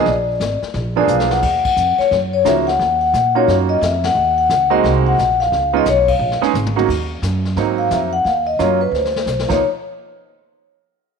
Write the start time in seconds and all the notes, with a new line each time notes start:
0.06 A#1 D5, brush sweep, kick, snare
0.40 G#1, kick, snare, hi-hat pedal
0.62 muted upright bass stroke, snare
0.74 A#1, brush sweep, kick, snare
0.96 F3 A#3 B3 D4 G#4 D5
1.08 B1 F5, hi-hat pedal
1.20 snare
1.31 F#5, snare
1.43 D#2, brush sweep, kick, snare, crash
1.65 F#5, kick, crash
1.76 F2, hi-hat pedal
1.99 C#5, muted upright bass stroke, snare
2.11 F#2, brush sweep, kick, snare
2.33 C#5
2.45 C#2 F3 A#3 C#4 D#4 F#4 E5, kick, snare, hi-hat pedal
2.67 F#5, snare
2.79 D#2, brush sweep, kick, snare
3.01 F#5
3.14 A#2, kick, snare, hi-hat pedal
3.35 A#3 C#4 D#4 F4 F#4 C#5
3.48 F#2, brush sweep, kick, snare
3.69 D#5
3.81 F2 E5, kick, snare, hi-hat pedal
4.04 F#5, snare, ride
4.15 D#2, brush sweep
4.38 F#5
4.50 C#2, kick, snare, hi-hat pedal
4.70 G#3 A#3 C4 D#4 F#4 D#5
4.84 C2, brush sweep, kick, snare
5.07 F#5
5.18 A#1, kick, snare, hi-hat pedal
5.40 F5, snare
5.52 C#2, brush sweep, kick, snare
5.73 G#3 B3 C#4 D#4 F4 D#5
5.86 B1 C#5, kick, snare, hi-hat pedal
6.08 F5, kick, crash
6.19 A#1
6.31 snare
6.41 G#3 B3 C#4 D#4 G#4, muted upright bass stroke, snare
6.54 G#1, hi-hat pedal, mid tom
6.66 mid tom
6.76 F#3 A#3 C#4 D#4 F#4, mid tom
6.88 D#2, brush sweep, kick, snare, crash
7.22 F#2, kick, snare, hi-hat pedal
7.45 snare
7.56 G#2 F#3 A#3 C4 D#4, brush sweep, kick, snare
7.78 F5
7.91 F2 E5, kick, snare, hi-hat pedal
8.13 F#5
8.25 D#2 F5, brush sweep, kick, snare
8.47 D#5
8.59 F#2 F#3 A#3 C#4 F4 C#5, kick, snare, hi-hat pedal
8.81 B4
8.92 D2 C5, snare
9.05 snare
9.16 snare
9.26 B1, snare, hi-hat pedal
9.39 snare
9.48 C#2 F3 A#3 B3 D#4 C#5, kick, snare, crash